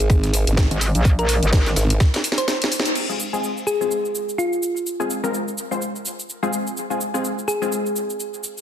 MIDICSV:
0, 0, Header, 1, 6, 480
1, 0, Start_track
1, 0, Key_signature, -4, "minor"
1, 0, Tempo, 476190
1, 1058, Time_signature, 4, 2, 24, 8
1, 8680, End_track
2, 0, Start_track
2, 0, Title_t, "Synth pluck"
2, 0, Program_c, 0, 84
2, 0, Note_on_c, 0, 68, 97
2, 237, Note_off_c, 0, 68, 0
2, 1198, Note_on_c, 0, 70, 96
2, 1862, Note_off_c, 0, 70, 0
2, 2398, Note_on_c, 0, 72, 96
2, 2878, Note_off_c, 0, 72, 0
2, 3697, Note_on_c, 0, 68, 88
2, 4077, Note_off_c, 0, 68, 0
2, 4419, Note_on_c, 0, 65, 94
2, 4798, Note_off_c, 0, 65, 0
2, 7538, Note_on_c, 0, 68, 94
2, 7917, Note_off_c, 0, 68, 0
2, 8680, End_track
3, 0, Start_track
3, 0, Title_t, "Synth stab"
3, 0, Program_c, 1, 62
3, 3117, Note_on_c, 1, 56, 65
3, 3117, Note_on_c, 1, 60, 63
3, 3117, Note_on_c, 1, 65, 65
3, 3117, Note_on_c, 1, 68, 81
3, 3218, Note_off_c, 1, 56, 0
3, 3218, Note_off_c, 1, 60, 0
3, 3218, Note_off_c, 1, 65, 0
3, 3218, Note_off_c, 1, 68, 0
3, 3357, Note_on_c, 1, 56, 77
3, 3357, Note_on_c, 1, 60, 75
3, 3357, Note_on_c, 1, 65, 74
3, 3357, Note_on_c, 1, 68, 92
3, 3542, Note_off_c, 1, 56, 0
3, 3542, Note_off_c, 1, 60, 0
3, 3542, Note_off_c, 1, 65, 0
3, 3542, Note_off_c, 1, 68, 0
3, 3837, Note_on_c, 1, 56, 74
3, 3837, Note_on_c, 1, 60, 67
3, 3837, Note_on_c, 1, 65, 65
3, 3838, Note_on_c, 1, 68, 82
3, 5004, Note_off_c, 1, 56, 0
3, 5004, Note_off_c, 1, 60, 0
3, 5004, Note_off_c, 1, 65, 0
3, 5004, Note_off_c, 1, 68, 0
3, 5037, Note_on_c, 1, 56, 87
3, 5037, Note_on_c, 1, 60, 77
3, 5037, Note_on_c, 1, 65, 79
3, 5037, Note_on_c, 1, 68, 96
3, 5222, Note_off_c, 1, 56, 0
3, 5222, Note_off_c, 1, 60, 0
3, 5222, Note_off_c, 1, 65, 0
3, 5222, Note_off_c, 1, 68, 0
3, 5277, Note_on_c, 1, 56, 89
3, 5277, Note_on_c, 1, 60, 90
3, 5277, Note_on_c, 1, 65, 87
3, 5277, Note_on_c, 1, 70, 101
3, 5462, Note_off_c, 1, 56, 0
3, 5462, Note_off_c, 1, 60, 0
3, 5462, Note_off_c, 1, 65, 0
3, 5462, Note_off_c, 1, 70, 0
3, 5757, Note_on_c, 1, 56, 76
3, 5757, Note_on_c, 1, 60, 72
3, 5757, Note_on_c, 1, 72, 85
3, 5758, Note_on_c, 1, 65, 70
3, 5859, Note_off_c, 1, 56, 0
3, 5859, Note_off_c, 1, 60, 0
3, 5859, Note_off_c, 1, 65, 0
3, 5859, Note_off_c, 1, 72, 0
3, 6478, Note_on_c, 1, 56, 98
3, 6478, Note_on_c, 1, 60, 93
3, 6478, Note_on_c, 1, 65, 93
3, 6478, Note_on_c, 1, 68, 107
3, 6924, Note_off_c, 1, 56, 0
3, 6924, Note_off_c, 1, 60, 0
3, 6924, Note_off_c, 1, 65, 0
3, 6924, Note_off_c, 1, 68, 0
3, 6958, Note_on_c, 1, 56, 67
3, 6958, Note_on_c, 1, 60, 62
3, 6958, Note_on_c, 1, 65, 65
3, 6958, Note_on_c, 1, 68, 78
3, 7059, Note_off_c, 1, 56, 0
3, 7059, Note_off_c, 1, 60, 0
3, 7059, Note_off_c, 1, 65, 0
3, 7059, Note_off_c, 1, 68, 0
3, 7197, Note_on_c, 1, 56, 81
3, 7197, Note_on_c, 1, 60, 75
3, 7197, Note_on_c, 1, 65, 72
3, 7197, Note_on_c, 1, 68, 85
3, 7382, Note_off_c, 1, 56, 0
3, 7382, Note_off_c, 1, 60, 0
3, 7382, Note_off_c, 1, 65, 0
3, 7382, Note_off_c, 1, 68, 0
3, 7677, Note_on_c, 1, 56, 72
3, 7677, Note_on_c, 1, 60, 70
3, 7677, Note_on_c, 1, 65, 70
3, 7677, Note_on_c, 1, 68, 81
3, 8680, Note_off_c, 1, 56, 0
3, 8680, Note_off_c, 1, 60, 0
3, 8680, Note_off_c, 1, 65, 0
3, 8680, Note_off_c, 1, 68, 0
3, 8680, End_track
4, 0, Start_track
4, 0, Title_t, "Wobble bass"
4, 0, Program_c, 2, 39
4, 717, Note_on_c, 2, 32, 95
4, 935, Note_off_c, 2, 32, 0
4, 957, Note_on_c, 2, 34, 102
4, 1415, Note_off_c, 2, 34, 0
4, 1437, Note_on_c, 2, 32, 93
4, 1522, Note_off_c, 2, 32, 0
4, 1538, Note_on_c, 2, 32, 104
4, 1762, Note_off_c, 2, 32, 0
4, 8680, End_track
5, 0, Start_track
5, 0, Title_t, "Wobble bass"
5, 0, Program_c, 3, 39
5, 0, Note_on_c, 3, 32, 98
5, 455, Note_off_c, 3, 32, 0
5, 476, Note_on_c, 3, 32, 95
5, 695, Note_off_c, 3, 32, 0
5, 1778, Note_on_c, 3, 32, 96
5, 2002, Note_off_c, 3, 32, 0
5, 8680, End_track
6, 0, Start_track
6, 0, Title_t, "Drums"
6, 4, Note_on_c, 9, 69, 36
6, 98, Note_on_c, 9, 36, 113
6, 98, Note_on_c, 9, 54, 85
6, 105, Note_off_c, 9, 69, 0
6, 105, Note_on_c, 9, 69, 46
6, 199, Note_off_c, 9, 36, 0
6, 199, Note_off_c, 9, 54, 0
6, 206, Note_off_c, 9, 69, 0
6, 237, Note_on_c, 9, 42, 53
6, 238, Note_on_c, 9, 38, 46
6, 244, Note_on_c, 9, 69, 23
6, 338, Note_off_c, 9, 42, 0
6, 338, Note_on_c, 9, 46, 98
6, 339, Note_off_c, 9, 38, 0
6, 339, Note_on_c, 9, 54, 66
6, 345, Note_off_c, 9, 69, 0
6, 345, Note_on_c, 9, 69, 86
6, 439, Note_off_c, 9, 46, 0
6, 440, Note_off_c, 9, 54, 0
6, 446, Note_off_c, 9, 69, 0
6, 477, Note_on_c, 9, 42, 73
6, 478, Note_off_c, 9, 42, 0
6, 478, Note_on_c, 9, 42, 47
6, 484, Note_on_c, 9, 69, 36
6, 578, Note_on_c, 9, 36, 110
6, 578, Note_on_c, 9, 38, 118
6, 578, Note_on_c, 9, 54, 97
6, 579, Note_off_c, 9, 42, 0
6, 582, Note_off_c, 9, 38, 0
6, 582, Note_on_c, 9, 38, 121
6, 585, Note_off_c, 9, 69, 0
6, 585, Note_on_c, 9, 69, 49
6, 679, Note_off_c, 9, 36, 0
6, 679, Note_off_c, 9, 54, 0
6, 683, Note_off_c, 9, 38, 0
6, 686, Note_off_c, 9, 69, 0
6, 718, Note_on_c, 9, 42, 58
6, 724, Note_on_c, 9, 69, 25
6, 818, Note_off_c, 9, 42, 0
6, 818, Note_on_c, 9, 38, 48
6, 818, Note_on_c, 9, 46, 89
6, 818, Note_on_c, 9, 54, 70
6, 825, Note_off_c, 9, 69, 0
6, 825, Note_on_c, 9, 69, 84
6, 919, Note_off_c, 9, 38, 0
6, 919, Note_off_c, 9, 46, 0
6, 919, Note_off_c, 9, 54, 0
6, 925, Note_off_c, 9, 69, 0
6, 957, Note_on_c, 9, 42, 70
6, 964, Note_on_c, 9, 69, 39
6, 1058, Note_off_c, 9, 42, 0
6, 1058, Note_on_c, 9, 36, 116
6, 1058, Note_on_c, 9, 54, 97
6, 1065, Note_off_c, 9, 69, 0
6, 1065, Note_on_c, 9, 69, 47
6, 1159, Note_off_c, 9, 36, 0
6, 1159, Note_off_c, 9, 54, 0
6, 1166, Note_off_c, 9, 69, 0
6, 1198, Note_on_c, 9, 42, 42
6, 1204, Note_on_c, 9, 69, 23
6, 1298, Note_off_c, 9, 42, 0
6, 1298, Note_on_c, 9, 46, 105
6, 1299, Note_on_c, 9, 38, 51
6, 1299, Note_on_c, 9, 54, 69
6, 1305, Note_off_c, 9, 69, 0
6, 1305, Note_on_c, 9, 69, 82
6, 1399, Note_off_c, 9, 38, 0
6, 1399, Note_off_c, 9, 46, 0
6, 1399, Note_off_c, 9, 54, 0
6, 1406, Note_off_c, 9, 69, 0
6, 1438, Note_on_c, 9, 42, 76
6, 1444, Note_on_c, 9, 69, 36
6, 1538, Note_off_c, 9, 42, 0
6, 1538, Note_on_c, 9, 36, 116
6, 1538, Note_on_c, 9, 38, 121
6, 1538, Note_on_c, 9, 54, 90
6, 1542, Note_off_c, 9, 38, 0
6, 1542, Note_on_c, 9, 38, 120
6, 1545, Note_off_c, 9, 69, 0
6, 1545, Note_on_c, 9, 69, 48
6, 1639, Note_off_c, 9, 36, 0
6, 1639, Note_off_c, 9, 54, 0
6, 1643, Note_off_c, 9, 38, 0
6, 1646, Note_off_c, 9, 69, 0
6, 1677, Note_on_c, 9, 38, 59
6, 1678, Note_on_c, 9, 42, 42
6, 1681, Note_off_c, 9, 38, 0
6, 1681, Note_on_c, 9, 38, 37
6, 1684, Note_on_c, 9, 69, 25
6, 1778, Note_off_c, 9, 38, 0
6, 1778, Note_off_c, 9, 42, 0
6, 1778, Note_on_c, 9, 38, 111
6, 1778, Note_on_c, 9, 46, 85
6, 1778, Note_on_c, 9, 54, 86
6, 1785, Note_off_c, 9, 69, 0
6, 1785, Note_on_c, 9, 69, 79
6, 1878, Note_off_c, 9, 38, 0
6, 1878, Note_off_c, 9, 54, 0
6, 1879, Note_off_c, 9, 46, 0
6, 1886, Note_off_c, 9, 69, 0
6, 1918, Note_on_c, 9, 42, 73
6, 1924, Note_on_c, 9, 69, 36
6, 2018, Note_on_c, 9, 36, 109
6, 2018, Note_on_c, 9, 38, 96
6, 2018, Note_on_c, 9, 54, 76
6, 2019, Note_off_c, 9, 38, 0
6, 2019, Note_off_c, 9, 42, 0
6, 2019, Note_on_c, 9, 38, 70
6, 2025, Note_off_c, 9, 69, 0
6, 2025, Note_on_c, 9, 69, 47
6, 2119, Note_off_c, 9, 36, 0
6, 2119, Note_off_c, 9, 38, 0
6, 2119, Note_off_c, 9, 54, 0
6, 2126, Note_off_c, 9, 69, 0
6, 2157, Note_on_c, 9, 38, 109
6, 2157, Note_on_c, 9, 54, 82
6, 2158, Note_on_c, 9, 42, 52
6, 2164, Note_on_c, 9, 69, 22
6, 2178, Note_off_c, 9, 38, 0
6, 2178, Note_on_c, 9, 38, 77
6, 2258, Note_off_c, 9, 42, 0
6, 2258, Note_off_c, 9, 54, 0
6, 2258, Note_on_c, 9, 46, 104
6, 2265, Note_off_c, 9, 69, 0
6, 2265, Note_on_c, 9, 69, 83
6, 2279, Note_off_c, 9, 38, 0
6, 2339, Note_on_c, 9, 38, 85
6, 2359, Note_off_c, 9, 46, 0
6, 2366, Note_off_c, 9, 69, 0
6, 2397, Note_on_c, 9, 54, 67
6, 2398, Note_on_c, 9, 42, 72
6, 2404, Note_on_c, 9, 69, 38
6, 2439, Note_off_c, 9, 38, 0
6, 2498, Note_off_c, 9, 42, 0
6, 2498, Note_off_c, 9, 54, 0
6, 2498, Note_on_c, 9, 38, 110
6, 2498, Note_on_c, 9, 54, 78
6, 2499, Note_off_c, 9, 38, 0
6, 2499, Note_on_c, 9, 38, 97
6, 2505, Note_off_c, 9, 69, 0
6, 2505, Note_on_c, 9, 69, 47
6, 2599, Note_off_c, 9, 38, 0
6, 2599, Note_off_c, 9, 54, 0
6, 2606, Note_off_c, 9, 69, 0
6, 2638, Note_on_c, 9, 42, 58
6, 2645, Note_on_c, 9, 69, 24
6, 2659, Note_on_c, 9, 38, 100
6, 2738, Note_on_c, 9, 54, 63
6, 2739, Note_off_c, 9, 42, 0
6, 2739, Note_on_c, 9, 46, 88
6, 2745, Note_off_c, 9, 69, 0
6, 2745, Note_on_c, 9, 69, 81
6, 2760, Note_off_c, 9, 38, 0
6, 2818, Note_on_c, 9, 38, 102
6, 2839, Note_off_c, 9, 46, 0
6, 2839, Note_off_c, 9, 54, 0
6, 2846, Note_off_c, 9, 69, 0
6, 2877, Note_on_c, 9, 54, 80
6, 2878, Note_on_c, 9, 42, 77
6, 2884, Note_on_c, 9, 69, 36
6, 2919, Note_off_c, 9, 38, 0
6, 2978, Note_off_c, 9, 42, 0
6, 2978, Note_off_c, 9, 54, 0
6, 2978, Note_on_c, 9, 49, 81
6, 2985, Note_off_c, 9, 69, 0
6, 2985, Note_on_c, 9, 69, 40
6, 3079, Note_off_c, 9, 49, 0
6, 3086, Note_off_c, 9, 69, 0
6, 3124, Note_on_c, 9, 69, 22
6, 3225, Note_off_c, 9, 69, 0
6, 3225, Note_on_c, 9, 69, 73
6, 3326, Note_off_c, 9, 69, 0
6, 3364, Note_on_c, 9, 69, 32
6, 3465, Note_off_c, 9, 69, 0
6, 3465, Note_on_c, 9, 69, 42
6, 3566, Note_off_c, 9, 69, 0
6, 3604, Note_on_c, 9, 69, 20
6, 3705, Note_off_c, 9, 69, 0
6, 3705, Note_on_c, 9, 69, 68
6, 3806, Note_off_c, 9, 69, 0
6, 3844, Note_on_c, 9, 69, 31
6, 3945, Note_off_c, 9, 69, 0
6, 3945, Note_on_c, 9, 69, 43
6, 4046, Note_off_c, 9, 69, 0
6, 4084, Note_on_c, 9, 69, 21
6, 4185, Note_off_c, 9, 69, 0
6, 4185, Note_on_c, 9, 69, 70
6, 4285, Note_off_c, 9, 69, 0
6, 4324, Note_on_c, 9, 69, 31
6, 4425, Note_off_c, 9, 69, 0
6, 4425, Note_on_c, 9, 69, 41
6, 4526, Note_off_c, 9, 69, 0
6, 4564, Note_on_c, 9, 69, 21
6, 4665, Note_off_c, 9, 69, 0
6, 4665, Note_on_c, 9, 69, 76
6, 4766, Note_off_c, 9, 69, 0
6, 4804, Note_on_c, 9, 69, 33
6, 4905, Note_off_c, 9, 69, 0
6, 4905, Note_on_c, 9, 69, 40
6, 5006, Note_off_c, 9, 69, 0
6, 5044, Note_on_c, 9, 69, 21
6, 5145, Note_off_c, 9, 69, 0
6, 5145, Note_on_c, 9, 69, 65
6, 5245, Note_off_c, 9, 69, 0
6, 5284, Note_on_c, 9, 69, 30
6, 5384, Note_off_c, 9, 69, 0
6, 5385, Note_on_c, 9, 69, 41
6, 5485, Note_off_c, 9, 69, 0
6, 5524, Note_on_c, 9, 69, 21
6, 5625, Note_off_c, 9, 69, 0
6, 5625, Note_on_c, 9, 69, 65
6, 5725, Note_off_c, 9, 69, 0
6, 5764, Note_on_c, 9, 69, 31
6, 5865, Note_off_c, 9, 69, 0
6, 5865, Note_on_c, 9, 69, 39
6, 5966, Note_off_c, 9, 69, 0
6, 6004, Note_on_c, 9, 69, 19
6, 6105, Note_off_c, 9, 69, 0
6, 6105, Note_on_c, 9, 69, 74
6, 6206, Note_off_c, 9, 69, 0
6, 6244, Note_on_c, 9, 69, 32
6, 6345, Note_off_c, 9, 69, 0
6, 6345, Note_on_c, 9, 69, 39
6, 6446, Note_off_c, 9, 69, 0
6, 6484, Note_on_c, 9, 69, 20
6, 6585, Note_off_c, 9, 69, 0
6, 6585, Note_on_c, 9, 69, 70
6, 6685, Note_off_c, 9, 69, 0
6, 6724, Note_on_c, 9, 69, 32
6, 6825, Note_off_c, 9, 69, 0
6, 6825, Note_on_c, 9, 69, 42
6, 6926, Note_off_c, 9, 69, 0
6, 6964, Note_on_c, 9, 69, 21
6, 7065, Note_off_c, 9, 69, 0
6, 7065, Note_on_c, 9, 69, 68
6, 7165, Note_off_c, 9, 69, 0
6, 7204, Note_on_c, 9, 69, 32
6, 7305, Note_off_c, 9, 69, 0
6, 7305, Note_on_c, 9, 69, 39
6, 7406, Note_off_c, 9, 69, 0
6, 7444, Note_on_c, 9, 69, 21
6, 7545, Note_off_c, 9, 69, 0
6, 7545, Note_on_c, 9, 69, 64
6, 7646, Note_off_c, 9, 69, 0
6, 7684, Note_on_c, 9, 69, 30
6, 7785, Note_off_c, 9, 69, 0
6, 7785, Note_on_c, 9, 69, 39
6, 7885, Note_off_c, 9, 69, 0
6, 7924, Note_on_c, 9, 69, 19
6, 8025, Note_off_c, 9, 69, 0
6, 8025, Note_on_c, 9, 69, 73
6, 8126, Note_off_c, 9, 69, 0
6, 8164, Note_on_c, 9, 69, 29
6, 8264, Note_off_c, 9, 69, 0
6, 8264, Note_on_c, 9, 69, 42
6, 8365, Note_off_c, 9, 69, 0
6, 8404, Note_on_c, 9, 69, 21
6, 8505, Note_off_c, 9, 69, 0
6, 8505, Note_on_c, 9, 69, 71
6, 8606, Note_off_c, 9, 69, 0
6, 8644, Note_on_c, 9, 69, 31
6, 8680, Note_off_c, 9, 69, 0
6, 8680, End_track
0, 0, End_of_file